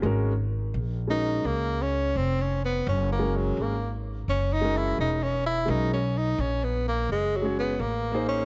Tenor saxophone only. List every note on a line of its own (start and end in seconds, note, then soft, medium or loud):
1.10 1.48 D#4 loud
1.46 1.84 A#3 loud
1.82 2.18 C#4 medium
2.17 2.43 C4 loud
2.41 2.63 C#4 medium
2.65 2.86 B3 medium
2.89 3.09 C#4 medium
3.12 3.38 A#3 medium
3.37 3.63 F#3 medium
3.61 3.94 A#3 medium
4.29 4.55 C#4 loud
4.53 4.78 D#4 loud
4.77 4.99 E4 loud
5.00 5.25 D#4 loud
5.23 5.46 C#4 medium
5.46 5.72 E4 loud
5.70 5.93 D#4 loud
5.93 6.20 C#4 medium
6.18 6.42 D#4 medium
6.41 6.65 C#4 medium
6.64 6.86 B3 medium
6.88 7.09 A#3 medium
7.12 7.38 G#3 medium
7.36 7.58 F#3 medium
7.59 7.82 B3 medium
7.81 8.27 A#3 loud
8.29 8.45 C#4 medium